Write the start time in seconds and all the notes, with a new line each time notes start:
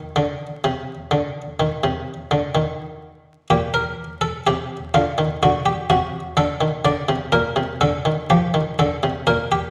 0.16 D3
0.64 C3
1.11 D3
1.60 D#3
1.84 C3
2.31 D3
2.55 D#3
3.50 A#2 G4
3.74 A#4
4.21 A4
4.47 C3 G4
4.94 D3 F4
5.18 D#3
5.43 D3 F#4
5.66 G4
5.90 C3 F#4
6.37 D3 A4
6.61 D#3
6.85 D3 D5
7.09 C3
7.32 A#2 A#4
7.56 C3
7.81 D3 A4
8.05 D#3
8.30 F3 G4
8.54 D#3
8.79 D3 A4
9.03 C3
9.27 A#2 A#4
9.52 G4